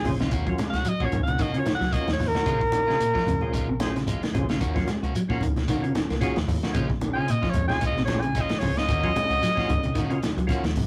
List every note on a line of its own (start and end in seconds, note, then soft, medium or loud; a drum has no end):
0.04 0.28 A#1 loud
0.04 0.13 C#3 medium
0.04 0.19 C#4 medium
0.04 0.19 F4 medium
0.04 0.19 G#4 medium
0.04 0.19 C5 medium
0.04 muted clean electric guitar stroke soft
0.04 open hi-hat medium
0.04 low conga medium
0.04 shekere soft
0.19 0.27 C#3 medium
0.19 0.31 G#3 medium
0.19 0.31 C#4 medium
0.19 0.32 F4 medium
0.19 snare medium
0.19 closed hi-hat soft
0.19 high conga medium
0.31 0.54 D#2 loud
0.31 0.47 A#3 medium
0.31 0.46 C#4 medium
0.31 0.45 F#4 medium
0.31 kick medium
0.31 closed hi-hat medium
0.31 shekere medium
0.46 0.53 F#3 medium
0.46 0.62 C#4 loud
0.46 0.62 F4 medium
0.46 0.62 F#4 medium
0.46 0.63 A#4 loud
0.46 muted clean electric guitar stroke soft
0.46 kick medium
0.46 closed hi-hat soft
0.58 0.73 G#3 medium
0.58 snare soft
0.58 closed hi-hat medium
0.58 high conga medium
0.58 shekere soft
0.70 0.83 C#2 medium
0.70 0.85 F#4 medium
0.70 0.90 F#5 medium
0.70 closed hi-hat soft
0.74 0.85 C#4 soft
0.74 snare soft
0.85 0.99 F#3 medium
0.85 muted fingered electric bass stroke soft
0.85 muted clean electric guitar stroke soft
0.85 closed hi-hat medium
0.85 shekere medium
0.89 1.06 D#5 loud
1.00 1.11 A#1 loud
1.00 1.16 C#4 medium
1.00 1.16 F4 medium
1.00 1.15 F#4 medium
1.00 1.16 F#4 medium
1.00 1.17 A#4 medium
1.00 kick medium
1.05 1.21 C#5 medium
1.12 1.35 C#2 medium
1.12 1.20 D#3 medium
1.12 closed hi-hat medium
1.12 high conga medium
1.12 low conga medium
1.12 shekere soft
1.23 1.43 F#5 medium
1.23 closed hi-hat soft
1.28 1.34 C#3 medium
1.28 muted clean electric guitar stroke soft
1.28 high conga medium
1.39 1.47 D#3 medium
1.39 1.54 A#3 medium
1.39 1.52 C#4 medium
1.39 1.52 F#4 medium
1.39 1.58 D#5 medium
1.39 kick medium
1.39 closed hi-hat medium
1.39 shekere medium
1.53 1.60 C#3 medium
1.53 1.65 C#4 medium
1.53 1.66 F4 medium
1.53 1.66 F#4 medium
1.53 muted clean electric guitar stroke soft
1.53 closed hi-hat soft
1.57 1.66 A#4 medium
1.57 1.74 C#5 medium
1.65 1.73 D#3 medium
1.65 muted clean electric guitar stroke soft
1.65 snare medium
1.65 closed hi-hat soft
1.65 high conga medium
1.65 shekere soft
1.75 1.95 F#5 loud
1.80 2.03 C#2 medium
1.80 1.94 F#3 medium
1.80 muted clean electric guitar stroke soft
1.80 snare soft
1.80 closed hi-hat soft
1.91 2.07 A#3 medium
1.91 2.10 C#4 medium
1.91 2.11 F4 medium
1.91 2.07 F#4 medium
1.91 2.11 F#4 medium
1.91 2.11 A#4 medium
1.91 2.10 D#5 loud
1.91 kick medium
1.91 closed hi-hat medium
1.91 high conga medium
1.91 shekere medium
2.07 2.18 D#2 medium
2.07 muted clean electric guitar stroke soft
2.07 snare medium
2.07 closed hi-hat soft
2.13 2.29 C#5 medium
2.19 2.32 D#2 loud
2.19 muted clean electric guitar stroke soft
2.19 snare soft
2.19 open hi-hat medium
2.19 low conga medium
2.19 shekere soft
2.28 3.85 A#4 loud
2.34 2.41 D#3 medium
2.34 2.46 C#4 soft
2.34 2.46 F#4 soft
2.34 snare medium
2.34 closed hi-hat soft
2.34 high conga medium
2.46 2.91 A#1 loud
2.46 2.60 C#3 medium
2.46 2.61 F3 medium
2.46 2.62 G#3 medium
2.46 2.59 C#4 medium
2.46 2.61 C#4 medium
2.46 2.60 F4 medium
2.46 2.61 F4 medium
2.46 2.60 G#4 medium
2.46 2.60 C5 medium
2.46 kick medium
2.46 closed hi-hat medium
2.46 shekere medium
2.61 muted clean electric guitar stroke soft
2.61 kick medium
2.72 2.81 D#3 medium
2.72 closed hi-hat medium
2.72 high conga loud
2.72 shekere soft
2.87 3.02 C#3 medium
2.87 2.99 G#3 soft
2.87 2.99 C#4 soft
2.87 3.03 C#4 medium
2.87 2.99 F4 medium
2.87 3.04 F4 medium
2.87 3.04 G#4 medium
2.87 3.04 C5 medium
2.87 snare soft
3.00 3.13 A#2 medium
3.00 muted clean electric guitar stroke soft
3.00 closed hi-hat medium
3.00 shekere medium
3.14 3.21 F3 medium
3.14 3.30 G#3 soft
3.14 3.30 C#4 medium
3.14 3.29 F4 medium
3.14 kick medium
3.14 snare soft
3.27 3.40 F2 medium
3.27 3.41 C#3 medium
3.27 closed hi-hat medium
3.27 high conga medium
3.27 low conga medium
3.27 shekere soft
3.41 3.52 C#4 medium
3.41 3.53 F4 medium
3.41 3.52 G#4 medium
3.41 3.53 C5 medium
3.41 muted fingered electric bass stroke soft
3.41 muted clean electric guitar stroke soft
3.41 high conga medium
3.53 3.66 C#2 loud
3.53 3.68 F3 medium
3.53 3.69 G#3 medium
3.53 3.68 C#4 medium
3.53 3.68 F4 medium
3.53 kick medium
3.53 closed hi-hat medium
3.53 shekere medium
3.69 4.24 A#1 medium
3.69 3.83 C3 medium
3.69 muted clean electric guitar stroke soft
3.80 3.98 C#4 medium
3.80 3.98 F4 medium
3.80 3.98 G#4 medium
3.80 3.98 C5 medium
3.80 muted clean electric guitar stroke soft
3.80 snare medium
3.80 closed hi-hat medium
3.80 high conga loud
3.80 shekere soft
3.96 4.10 C#3 medium
3.96 muted clean electric guitar stroke soft
3.96 snare soft
3.96 closed hi-hat soft
4.07 4.22 F3 medium
4.07 4.22 G#3 medium
4.07 4.22 F4 medium
4.07 muted clean electric guitar stroke medium
4.07 closed hi-hat medium
4.07 low conga medium
4.07 shekere medium
4.23 4.29 D#3 medium
4.23 muted clean electric guitar stroke soft
4.23 snare medium
4.23 closed hi-hat soft
4.34 4.57 A#1 medium
4.34 4.43 C#3 medium
4.34 4.47 C#4 medium
4.34 4.47 F4 medium
4.34 4.48 G#4 medium
4.34 4.48 C5 medium
4.34 muted clean electric guitar stroke soft
4.34 closed hi-hat medium
4.34 low conga medium
4.34 shekere soft
4.49 4.56 C#3 medium
4.49 4.60 G#3 soft
4.49 4.59 C#4 soft
4.49 4.60 F4 medium
4.49 snare medium
4.49 closed hi-hat soft
4.60 4.84 D#2 loud
4.60 4.75 D#3 medium
4.60 4.75 A#3 medium
4.60 4.75 C#4 medium
4.60 4.75 F#4 medium
4.60 kick medium
4.60 closed hi-hat medium
4.60 shekere medium
4.74 4.82 F#3 medium
4.74 4.90 C#4 medium
4.74 4.90 F4 medium
4.74 4.90 F#4 medium
4.74 4.91 A#4 loud
4.74 muted clean electric guitar stroke soft
4.74 kick medium
4.74 snare soft
4.74 closed hi-hat soft
4.88 5.03 G#3 medium
4.88 snare soft
4.88 closed hi-hat medium
4.88 high conga medium
4.88 shekere soft
5.03 5.13 C#2 medium
5.03 5.14 A#3 soft
5.03 5.14 C#4 medium
5.03 5.15 F#4 medium
5.03 closed hi-hat soft
5.15 5.29 F#3 medium
5.15 muted clean electric guitar stroke soft
5.15 muted fingered electric bass stroke soft
5.15 closed hi-hat medium
5.15 shekere medium
5.28 5.39 A#1 medium
5.28 5.45 A#3 medium
5.28 5.44 C#4 medium
5.28 5.44 F4 medium
5.28 5.44 F#4 medium
5.28 5.45 A#4 loud
5.28 kick medium
5.41 5.64 C#2 medium
5.41 5.50 D#3 medium
5.41 closed hi-hat soft
5.41 high conga medium
5.41 low conga medium
5.41 shekere soft
5.56 muted clean electric guitar stroke soft
5.56 snare soft
5.56 closed hi-hat soft
5.56 high conga medium
5.68 5.83 D#3 medium
5.68 5.77 D#3 medium
5.68 5.83 A#3 medium
5.68 5.83 C#4 medium
5.68 5.83 F#4 medium
5.68 kick medium
5.68 closed hi-hat medium
5.68 high conga medium
5.68 shekere medium
5.82 5.90 C#3 medium
5.82 5.93 C#4 medium
5.82 5.93 F4 medium
5.82 5.93 F#4 medium
5.82 5.94 A#4 medium
5.82 muted clean electric guitar stroke soft
5.82 closed hi-hat soft
5.95 6.04 D#3 medium
5.95 muted clean electric guitar stroke soft
5.95 snare medium
5.95 closed hi-hat soft
5.95 high conga medium
5.95 shekere soft
6.10 6.32 C#2 medium
6.10 6.24 A#3 medium
6.10 muted clean electric guitar stroke medium
6.10 snare soft
6.10 closed hi-hat soft
6.21 6.37 D#3 medium
6.21 6.37 A#3 medium
6.21 6.38 C#4 loud
6.21 6.37 C#4 medium
6.21 6.38 F4 medium
6.21 6.39 F#4 loud
6.21 6.37 F#4 medium
6.21 6.39 G#4 loud
6.21 kick medium
6.21 snare soft
6.21 closed hi-hat medium
6.21 high conga medium
6.21 shekere medium
6.36 6.47 D#2 medium
6.36 muted clean electric guitar stroke soft
6.36 snare medium
6.36 closed hi-hat soft
6.48 6.60 D#2 loud
6.48 muted clean electric guitar stroke medium
6.48 open hi-hat medium
6.48 low conga medium
6.48 shekere soft
6.62 6.70 D#3 medium
6.62 6.74 A#3 medium
6.62 6.74 C#4 medium
6.62 6.75 F#4 medium
6.62 snare medium
6.62 closed hi-hat soft
6.73 7.20 A#1 loud
6.73 6.89 C#3 medium
6.73 6.89 G#3 medium
6.73 6.87 C#4 medium
6.73 6.89 C#4 loud
6.73 6.88 F4 medium
6.73 6.89 F4 loud
6.73 6.88 G#4 medium
6.73 6.88 C5 medium
6.73 kick medium
6.73 closed hi-hat medium
6.73 shekere medium
6.90 muted clean electric guitar stroke soft
6.90 kick medium
7.01 7.10 D#3 medium
7.01 closed hi-hat medium
7.01 high conga medium
7.01 shekere soft
7.13 7.30 C#4 medium
7.13 7.26 C#4 soft
7.13 7.31 F4 medium
7.13 7.27 F4 medium
7.13 7.31 G#4 medium
7.13 7.31 C5 medium
7.13 7.33 G#5 medium
7.18 7.31 C#3 medium
7.27 7.42 A#2 loud
7.27 muted clean electric guitar stroke soft
7.27 closed hi-hat medium
7.27 shekere medium
7.31 7.51 D#5 medium
7.42 7.50 F3 medium
7.42 7.58 C#4 soft
7.42 7.57 F4 medium
7.42 kick medium
7.42 snare soft
7.50 7.65 C#5 medium
7.50 closed hi-hat medium
7.54 7.69 F2 medium
7.54 muted clean electric guitar stroke medium
7.54 high conga medium
7.54 low conga medium
7.54 shekere soft
7.68 7.80 C#4 medium
7.68 7.80 F4 medium
7.68 7.80 G#4 medium
7.68 7.80 C#5 medium
7.68 7.83 G#5 loud
7.68 muted clean electric guitar stroke soft
7.68 muted fingered electric bass stroke soft
7.68 snare soft
7.68 high conga loud
7.81 7.94 C#2 loud
7.81 7.96 G#3 medium
7.81 7.95 C#4 medium
7.81 7.95 F4 medium
7.81 kick medium
7.81 closed hi-hat medium
7.81 shekere medium
7.86 8.01 D#5 medium
7.96 8.52 A#1 medium
7.96 8.11 C3 medium
7.96 muted clean electric guitar stroke soft
7.96 snare soft
8.05 8.25 C#4 medium
8.05 8.25 F4 medium
8.05 8.25 G#4 medium
8.05 8.25 C5 medium
8.05 8.23 C#5 medium
8.05 muted clean electric guitar stroke soft
8.05 snare medium
8.05 closed hi-hat medium
8.05 high conga loud
8.11 shekere soft
8.21 8.38 C#3 medium
8.21 8.43 G#5 medium
8.21 muted clean electric guitar stroke soft
8.21 closed hi-hat soft
8.35 8.51 G#3 medium
8.35 8.51 C#4 medium
8.35 8.50 F4 medium
8.35 kick medium
8.35 closed hi-hat medium
8.35 low conga medium
8.35 shekere medium
8.41 8.61 D#5 medium
8.49 8.56 D#3 medium
8.49 muted clean electric guitar stroke soft
8.49 snare medium
8.49 closed hi-hat soft
8.59 8.85 C#2 loud
8.59 8.70 C#3 medium
8.59 8.75 C#4 medium
8.59 8.75 F4 medium
8.59 8.75 G#4 medium
8.59 8.76 C5 medium
8.59 8.79 C#5 loud
8.59 open hi-hat medium
8.59 low conga medium
8.63 muted clean electric guitar stroke soft
8.63 shekere soft
8.76 8.88 C#4 soft
8.76 8.89 F4 medium
8.76 10.31 D#5 loud
8.76 muted clean electric guitar stroke medium
8.76 snare medium
8.76 closed hi-hat soft
8.89 9.11 D#2 loud
8.89 9.04 D#3 medium
8.89 9.03 A#3 medium
8.89 9.02 C#4 loud
8.89 9.03 F#4 medium
8.89 kick medium
8.89 closed hi-hat medium
8.89 shekere medium
9.03 9.10 F#3 medium
9.03 9.18 C#4 medium
9.03 9.19 F4 medium
9.03 9.19 F#4 medium
9.03 9.19 A#4 medium
9.03 muted clean electric guitar stroke soft
9.03 kick medium
9.03 closed hi-hat soft
9.16 9.29 G#3 medium
9.16 closed hi-hat medium
9.16 high conga loud
9.16 shekere soft
9.29 9.40 C#2 medium
9.29 9.41 A#3 soft
9.29 9.41 C#4 medium
9.29 9.41 F#4 medium
9.29 closed hi-hat soft
9.41 9.56 F#3 medium
9.41 muted clean electric guitar stroke soft
9.41 muted fingered electric bass stroke soft
9.41 snare soft
9.41 closed hi-hat medium
9.41 shekere loud
9.55 9.67 A#1 medium
9.55 9.71 C#4 loud
9.55 9.71 F4 medium
9.55 9.72 F#4 loud
9.55 9.72 F#4 medium
9.55 9.72 A#4 loud
9.55 kick medium
9.55 snare soft
9.59 9.73 A#3 medium
9.59 9.73 C#4 medium
9.69 9.92 C#2 medium
9.69 9.76 D#3 medium
9.69 closed hi-hat medium
9.69 high conga medium
9.69 low conga medium
9.69 shekere soft
9.83 9.90 C#3 medium
9.83 muted clean electric guitar stroke soft
9.83 closed hi-hat soft
9.83 high conga medium
9.95 10.03 D#3 loud
9.95 10.11 D#3 medium
9.95 10.12 A#3 medium
9.95 10.11 C#4 medium
9.95 10.12 F#4 medium
9.95 kick medium
9.95 closed hi-hat medium
9.95 high conga medium
9.95 shekere loud
10.09 10.17 C#3 medium
10.09 10.21 C#4 medium
10.09 10.21 F4 medium
10.09 10.21 F#4 medium
10.09 10.21 A#4 medium
10.09 muted clean electric guitar stroke soft
10.09 closed hi-hat soft
10.23 10.31 D#3 medium
10.23 muted clean electric guitar stroke soft
10.23 snare medium
10.23 closed hi-hat soft
10.23 high conga medium
10.23 shekere soft
10.37 10.60 C#2 medium
10.37 10.51 F#3 medium
10.37 muted clean electric guitar stroke soft
10.37 closed hi-hat soft
10.47 10.64 D#3 medium
10.47 10.65 A#3 medium
10.47 10.66 C#4 loud
10.47 10.65 C#4 medium
10.47 10.66 F4 loud
10.47 10.66 F#4 loud
10.47 10.65 F#4 medium
10.47 10.66 A#4 loud
10.47 kick medium
10.47 closed hi-hat medium
10.47 shekere medium
10.63 10.74 D#2 loud
10.63 muted clean electric guitar stroke soft
10.63 snare medium
10.63 closed hi-hat soft
10.75 10.87 C2 loud
10.75 muted clean electric guitar stroke soft
10.75 open hi-hat medium
10.75 low conga medium
10.75 shekere soft